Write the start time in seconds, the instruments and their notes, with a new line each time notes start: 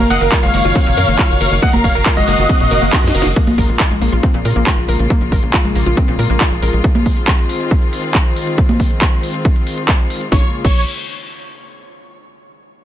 Already playing: string section D#3 F#3 A#3 F5
0.10 analog synth bass F#1, synth pluck A#4, supersaw synth D#5 F#5, grand piano F#5, open hi-hat, ride
0.21 analog synth bass F#1, supersaw synth A#4, grand piano A#4, closed hi-hat, tambourine
0.32 synth pluck F4, supersaw synth A#4, grand piano A#4, kick, clap, closed hi-hat, ride, tambourine
0.43 analog synth bass F#1, synth pluck G#3, supersaw synth C#5 F5, grand piano F5, closed hi-hat, tambourine
0.54 analog synth bass F#1, synth pluck A#3, open hi-hat, ride
0.65 analog synth bass F#1, synth pluck F4, closed hi-hat, tambourine
0.75 synth pluck C4, kick, closed hi-hat, ride, tambourine
0.86 analog synth bass F#1, synth pluck A#2, closed hi-hat, tambourine
0.97 analog synth bass F#2, synth pluck A#4, open hi-hat, ride
1.08 analog synth bass F#1, synth pluck A#3, closed hi-hat, tambourine
1.19 synth pluck F4, kick, clap, closed hi-hat, ride, tambourine
1.30 analog synth bass F#1, tambourine
1.41 analog synth bass F#1, synth pluck A#4, open hi-hat, ride
1.52 analog synth bass F#1, closed hi-hat, tambourine
1.62 synth pluck A#3, supersaw synth D#5 F#5, grand piano F#5, kick, closed hi-hat, ride, tambourine
1.73 analog synth bass F#1, grand piano A#4, supersaw synth A#4, closed hi-hat, tambourine, high conga
1.84 analog synth bass F#1, synth pluck A#4, supersaw synth C#5 F5, grand piano F5, kick, open hi-hat, ride
1.95 analog synth bass F#1, grand piano A#4, supersaw synth A#4, closed hi-hat, tambourine
2.06 synth pluck F4, grand piano A#4, supersaw synth A#4, kick, clap, closed hi-hat, ride, tambourine
2.17 analog synth bass F#1, synth pluck G#3, supersaw synth F#4 D#5, grand piano D#5, closed hi-hat, tambourine
2.28 analog synth bass F#1, synth pluck A#3, open hi-hat, ride
2.39 analog synth bass F#1, synth pluck F4, closed hi-hat, tambourine
2.49 synth pluck C4, kick, closed hi-hat, ride, tambourine
2.60 analog synth bass F#1, synth pluck A#2, closed hi-hat, tambourine
2.71 analog synth bass F#1, synth pluck A#4, open hi-hat, ride
2.82 analog synth bass F#1, synth pluck A#3, closed hi-hat, tambourine
2.93 synth pluck F4, kick, snare, clap, closed hi-hat, ride, tambourine
3.04 analog synth bass F#2, snare, closed hi-hat, tambourine
3.15 analog synth bass F#1, synth pluck A#4, open hi-hat, ride
3.22 analog synth bass F#1, snare, closed hi-hat, tambourine
3.36 string section C#3 G#3 A#3 F4, synth pluck A#3, kick, closed hi-hat
3.47 analog synth bass A#1, closed hi-hat, high conga
3.58 analog synth bass A#1, synth pluck A#4, kick, open hi-hat
3.69 analog synth bass A#1, closed hi-hat
3.80 synth pluck F4, kick, clap, closed hi-hat
3.91 analog synth bass A#1, synth pluck G#3, closed hi-hat
4.02 analog synth bass A#1, synth pluck A#3, open hi-hat
4.12 analog synth bass A#1, synth pluck F4, closed hi-hat
4.23 synth pluck C4, kick, closed hi-hat
4.34 analog synth bass A#1, synth pluck A#2, closed hi-hat
4.45 analog synth bass A#2, synth pluck A#4, open hi-hat
4.56 analog synth bass A#1, synth pluck A#3, closed hi-hat
4.67 synth pluck F4, kick, clap, closed hi-hat
4.78 analog synth bass A#1
4.89 analog synth bass A#1, synth pluck A#4, open hi-hat
4.99 analog synth bass A#1, closed hi-hat
5.10 synth pluck A#3, kick, closed hi-hat
5.21 analog synth bass A#1, closed hi-hat
5.32 analog synth bass A#1, synth pluck A#4, kick, open hi-hat
5.43 analog synth bass A#1, closed hi-hat
5.54 synth pluck F4, kick, clap, closed hi-hat
5.65 analog synth bass A#1, synth pluck G#3, closed hi-hat
5.75 analog synth bass A#1, synth pluck A#3, open hi-hat
5.86 analog synth bass A#1, synth pluck F4, closed hi-hat
5.97 synth pluck C4, kick, closed hi-hat
6.08 analog synth bass A#1, synth pluck A#2, closed hi-hat
6.19 analog synth bass A#2, synth pluck A#4, open hi-hat
6.30 analog synth bass A#1, synth pluck A#3, closed hi-hat
6.41 synth pluck F4, kick, clap, closed hi-hat
6.52 analog synth bass A#1
6.62 analog synth bass A#1, synth pluck A#4, open hi-hat
6.73 analog synth bass A#1, closed hi-hat
6.84 string section D#3 C4, kick, closed hi-hat
6.95 closed hi-hat, high conga
7.06 kick, open hi-hat
7.17 closed hi-hat
7.28 kick, clap, closed hi-hat
7.39 closed hi-hat
7.49 open hi-hat
7.60 closed hi-hat
7.71 kick, closed hi-hat
7.82 closed hi-hat
7.93 open hi-hat
8.04 closed hi-hat
8.15 kick, clap, closed hi-hat
8.36 open hi-hat
8.47 closed hi-hat
8.58 kick, closed hi-hat
8.69 closed hi-hat, high conga
8.80 kick, open hi-hat
8.91 closed hi-hat
9.02 kick, clap, closed hi-hat
9.12 closed hi-hat
9.23 open hi-hat
9.34 closed hi-hat
9.45 kick, closed hi-hat
9.56 closed hi-hat
9.67 open hi-hat
9.78 closed hi-hat
9.88 kick, clap, closed hi-hat
10.10 open hi-hat
10.21 closed hi-hat
10.32 analog synth bass A#1, string section C#3 G#3 A#3 F4, supersaw synth C#5, kick, snare
10.65 analog synth bass A#1, supersaw synth C#5, kick, crash